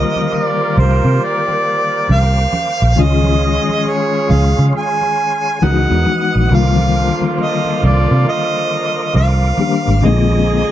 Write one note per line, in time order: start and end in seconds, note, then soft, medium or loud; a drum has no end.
0.00 2.94 D3 medium
0.00 2.92 D#3 medium
0.00 2.93 G3 medium
0.00 2.48 A#3 medium
0.00 2.93 A#3 medium
0.00 2.48 F4 medium
0.00 2.94 F4 medium
0.00 2.48 G4 medium
0.00 2.48 A#4 medium
0.00 2.93 A#4 medium
0.00 2.94 C5 medium
0.00 0.35 D#5 medium
0.00 1.16 F5 medium
0.00 2.93 D6 medium
0.16 high conga soft
0.33 0.77 D5 medium
0.33 muted conga soft
0.77 1.00 C2 medium
0.77 1.26 C5 medium
0.77 high conga medium
0.77 low conga medium
1.05 1.18 C3 medium
1.21 2.14 D5 loud
1.21 2.95 G5 medium
1.48 muted conga soft
2.09 2.45 C2 medium
2.09 3.02 F5 loud
2.09 muted conga soft
2.09 high conga medium
2.53 high conga medium
2.82 2.95 A#1 medium
2.96 3.57 C#2 loud
2.96 5.57 D#3 medium
2.96 5.13 G#3 medium
2.96 5.57 G#3 medium
2.96 5.13 C#4 medium
2.96 5.59 C#4 medium
2.96 5.13 F4 medium
2.96 5.59 F4 medium
2.96 5.13 G#4 medium
2.96 5.59 G#4 medium
2.96 5.59 C#5 medium
2.96 5.59 F5 medium
2.96 5.59 C6 medium
2.96 muted conga soft
2.96 low conga medium
3.01 3.90 D#5 loud
3.24 muted conga soft
3.24 high conga medium
3.69 high conga soft
3.85 4.33 C#5 medium
3.85 muted conga soft
4.30 4.53 C#2 medium
4.30 4.64 F5 medium
4.30 high conga medium
4.30 low conga medium
4.59 4.71 C#3 medium
4.73 muted conga soft
4.77 5.66 G#5 loud
5.01 muted conga soft
5.62 5.85 C#2 loud
5.62 6.05 D#3 medium
5.62 6.50 E3 medium
5.62 6.05 G#3 medium
5.62 6.50 G#3 medium
5.62 6.05 B3 medium
5.62 6.50 B3 medium
5.62 6.05 D#4 medium
5.62 6.51 D#4 medium
5.62 6.51 F#4 medium
5.62 6.50 B4 medium
5.62 6.50 D#5 medium
5.62 6.49 F#5 medium
5.62 6.51 F#5 loud
5.62 6.49 D#6 medium
5.62 muted conga soft
5.62 high conga medium
5.91 6.03 E2 medium
6.06 high conga medium
6.35 6.48 A#1 medium
6.49 7.09 C2 loud
6.49 9.54 D3 medium
6.49 9.56 D3 medium
6.49 9.54 D#3 medium
6.49 9.55 F3 medium
6.49 9.55 G3 medium
6.49 9.54 A#3 medium
6.49 9.55 A#3 medium
6.49 9.55 F4 medium
6.49 9.56 F4 medium
6.49 10.00 A#4 medium
6.49 10.00 C5 medium
6.49 10.00 F5 medium
6.49 10.71 D6 medium
6.49 muted conga soft
6.49 low conga medium
6.54 7.36 F5 loud
6.77 high conga medium
7.21 high conga soft
7.38 7.81 D#5 medium
7.38 muted conga soft
7.65 muted conga soft
7.83 8.06 C2 loud
7.83 8.25 D5 medium
7.83 high conga medium
7.83 low conga medium
8.11 8.24 C3 loud
8.25 9.12 D#5 loud
8.25 muted conga soft
9.14 9.51 C2 medium
9.14 10.07 F5 medium
9.14 high conga medium
9.42 muted conga soft
9.58 10.03 D#3 soft
9.58 10.03 G3 soft
9.58 10.03 A#3 soft
9.58 10.03 D4 soft
9.58 10.04 G4 medium
9.58 high conga medium
9.87 10.00 G#1 medium
10.01 10.62 A#1 loud
10.01 10.71 D3 medium
10.01 10.71 G#3 medium
10.01 10.71 A#3 medium
10.01 10.71 F4 medium
10.01 10.71 G#4 medium
10.01 10.71 C5 medium
10.01 10.71 G#5 medium
10.01 10.71 A#5 medium
10.01 low conga medium
10.05 10.71 C4 medium
10.05 10.13 D#4 medium
10.05 10.71 D#5 medium
10.13 10.71 F4 medium
10.30 muted conga soft
10.30 high conga medium